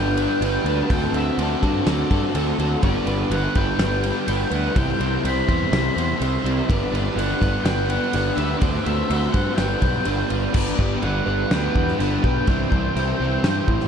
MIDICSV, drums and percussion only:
0, 0, Header, 1, 2, 480
1, 0, Start_track
1, 0, Key_signature, 1, "major"
1, 0, Tempo, 481928
1, 897, Time_signature, 4, 2, 24, 8
1, 13823, End_track
2, 0, Start_track
2, 0, Title_t, "Drums"
2, 173, Note_on_c, 9, 51, 79
2, 273, Note_off_c, 9, 51, 0
2, 418, Note_on_c, 9, 51, 95
2, 518, Note_off_c, 9, 51, 0
2, 656, Note_on_c, 9, 51, 63
2, 756, Note_off_c, 9, 51, 0
2, 898, Note_on_c, 9, 36, 114
2, 900, Note_on_c, 9, 51, 96
2, 997, Note_off_c, 9, 36, 0
2, 999, Note_off_c, 9, 51, 0
2, 1137, Note_on_c, 9, 51, 66
2, 1237, Note_off_c, 9, 51, 0
2, 1381, Note_on_c, 9, 51, 85
2, 1481, Note_off_c, 9, 51, 0
2, 1622, Note_on_c, 9, 36, 81
2, 1625, Note_on_c, 9, 51, 68
2, 1721, Note_off_c, 9, 36, 0
2, 1724, Note_off_c, 9, 51, 0
2, 1859, Note_on_c, 9, 51, 95
2, 1860, Note_on_c, 9, 38, 99
2, 1958, Note_off_c, 9, 51, 0
2, 1959, Note_off_c, 9, 38, 0
2, 2099, Note_on_c, 9, 51, 71
2, 2100, Note_on_c, 9, 36, 86
2, 2198, Note_off_c, 9, 51, 0
2, 2200, Note_off_c, 9, 36, 0
2, 2338, Note_on_c, 9, 51, 89
2, 2438, Note_off_c, 9, 51, 0
2, 2584, Note_on_c, 9, 51, 69
2, 2684, Note_off_c, 9, 51, 0
2, 2816, Note_on_c, 9, 51, 89
2, 2820, Note_on_c, 9, 36, 103
2, 2915, Note_off_c, 9, 51, 0
2, 2920, Note_off_c, 9, 36, 0
2, 3055, Note_on_c, 9, 51, 63
2, 3155, Note_off_c, 9, 51, 0
2, 3301, Note_on_c, 9, 51, 90
2, 3400, Note_off_c, 9, 51, 0
2, 3538, Note_on_c, 9, 51, 73
2, 3542, Note_on_c, 9, 36, 84
2, 3638, Note_off_c, 9, 51, 0
2, 3642, Note_off_c, 9, 36, 0
2, 3778, Note_on_c, 9, 51, 91
2, 3779, Note_on_c, 9, 38, 115
2, 3877, Note_off_c, 9, 51, 0
2, 3878, Note_off_c, 9, 38, 0
2, 4019, Note_on_c, 9, 51, 84
2, 4118, Note_off_c, 9, 51, 0
2, 4260, Note_on_c, 9, 51, 101
2, 4360, Note_off_c, 9, 51, 0
2, 4496, Note_on_c, 9, 51, 72
2, 4595, Note_off_c, 9, 51, 0
2, 4742, Note_on_c, 9, 36, 108
2, 4743, Note_on_c, 9, 51, 86
2, 4842, Note_off_c, 9, 36, 0
2, 4842, Note_off_c, 9, 51, 0
2, 4985, Note_on_c, 9, 51, 72
2, 5085, Note_off_c, 9, 51, 0
2, 5230, Note_on_c, 9, 51, 92
2, 5329, Note_off_c, 9, 51, 0
2, 5464, Note_on_c, 9, 36, 90
2, 5466, Note_on_c, 9, 51, 64
2, 5563, Note_off_c, 9, 36, 0
2, 5565, Note_off_c, 9, 51, 0
2, 5707, Note_on_c, 9, 51, 89
2, 5708, Note_on_c, 9, 38, 109
2, 5807, Note_off_c, 9, 51, 0
2, 5808, Note_off_c, 9, 38, 0
2, 5957, Note_on_c, 9, 51, 71
2, 6056, Note_off_c, 9, 51, 0
2, 6190, Note_on_c, 9, 51, 84
2, 6290, Note_off_c, 9, 51, 0
2, 6436, Note_on_c, 9, 51, 69
2, 6536, Note_off_c, 9, 51, 0
2, 6670, Note_on_c, 9, 36, 112
2, 6675, Note_on_c, 9, 51, 93
2, 6769, Note_off_c, 9, 36, 0
2, 6774, Note_off_c, 9, 51, 0
2, 6919, Note_on_c, 9, 51, 69
2, 7018, Note_off_c, 9, 51, 0
2, 7157, Note_on_c, 9, 51, 89
2, 7257, Note_off_c, 9, 51, 0
2, 7388, Note_on_c, 9, 36, 81
2, 7392, Note_on_c, 9, 51, 72
2, 7393, Note_on_c, 9, 38, 31
2, 7487, Note_off_c, 9, 36, 0
2, 7492, Note_off_c, 9, 51, 0
2, 7493, Note_off_c, 9, 38, 0
2, 7624, Note_on_c, 9, 51, 92
2, 7625, Note_on_c, 9, 38, 110
2, 7724, Note_off_c, 9, 51, 0
2, 7725, Note_off_c, 9, 38, 0
2, 7864, Note_on_c, 9, 51, 82
2, 7964, Note_off_c, 9, 51, 0
2, 8100, Note_on_c, 9, 51, 96
2, 8199, Note_off_c, 9, 51, 0
2, 8342, Note_on_c, 9, 51, 68
2, 8442, Note_off_c, 9, 51, 0
2, 8580, Note_on_c, 9, 51, 101
2, 8584, Note_on_c, 9, 36, 102
2, 8680, Note_off_c, 9, 51, 0
2, 8684, Note_off_c, 9, 36, 0
2, 8827, Note_on_c, 9, 51, 76
2, 8927, Note_off_c, 9, 51, 0
2, 9068, Note_on_c, 9, 51, 91
2, 9167, Note_off_c, 9, 51, 0
2, 9300, Note_on_c, 9, 51, 73
2, 9301, Note_on_c, 9, 38, 35
2, 9305, Note_on_c, 9, 36, 83
2, 9399, Note_off_c, 9, 51, 0
2, 9400, Note_off_c, 9, 38, 0
2, 9405, Note_off_c, 9, 36, 0
2, 9539, Note_on_c, 9, 51, 91
2, 9540, Note_on_c, 9, 38, 110
2, 9639, Note_off_c, 9, 51, 0
2, 9640, Note_off_c, 9, 38, 0
2, 9779, Note_on_c, 9, 51, 70
2, 9782, Note_on_c, 9, 36, 84
2, 9878, Note_off_c, 9, 51, 0
2, 9882, Note_off_c, 9, 36, 0
2, 10012, Note_on_c, 9, 51, 84
2, 10112, Note_off_c, 9, 51, 0
2, 10260, Note_on_c, 9, 51, 66
2, 10359, Note_off_c, 9, 51, 0
2, 10497, Note_on_c, 9, 49, 122
2, 10497, Note_on_c, 9, 57, 60
2, 10504, Note_on_c, 9, 36, 116
2, 10597, Note_off_c, 9, 49, 0
2, 10597, Note_off_c, 9, 57, 0
2, 10604, Note_off_c, 9, 36, 0
2, 10745, Note_on_c, 9, 36, 81
2, 10845, Note_off_c, 9, 36, 0
2, 10980, Note_on_c, 9, 57, 56
2, 11079, Note_off_c, 9, 57, 0
2, 11465, Note_on_c, 9, 57, 62
2, 11466, Note_on_c, 9, 38, 116
2, 11565, Note_off_c, 9, 57, 0
2, 11566, Note_off_c, 9, 38, 0
2, 11709, Note_on_c, 9, 36, 92
2, 11808, Note_off_c, 9, 36, 0
2, 11834, Note_on_c, 9, 38, 35
2, 11933, Note_off_c, 9, 38, 0
2, 11953, Note_on_c, 9, 57, 65
2, 12053, Note_off_c, 9, 57, 0
2, 12190, Note_on_c, 9, 36, 94
2, 12290, Note_off_c, 9, 36, 0
2, 12422, Note_on_c, 9, 57, 67
2, 12428, Note_on_c, 9, 36, 108
2, 12521, Note_off_c, 9, 57, 0
2, 12528, Note_off_c, 9, 36, 0
2, 12669, Note_on_c, 9, 36, 81
2, 12768, Note_off_c, 9, 36, 0
2, 12913, Note_on_c, 9, 57, 59
2, 13012, Note_off_c, 9, 57, 0
2, 13386, Note_on_c, 9, 57, 62
2, 13387, Note_on_c, 9, 38, 121
2, 13486, Note_off_c, 9, 57, 0
2, 13487, Note_off_c, 9, 38, 0
2, 13625, Note_on_c, 9, 36, 92
2, 13725, Note_off_c, 9, 36, 0
2, 13748, Note_on_c, 9, 38, 34
2, 13823, Note_off_c, 9, 38, 0
2, 13823, End_track
0, 0, End_of_file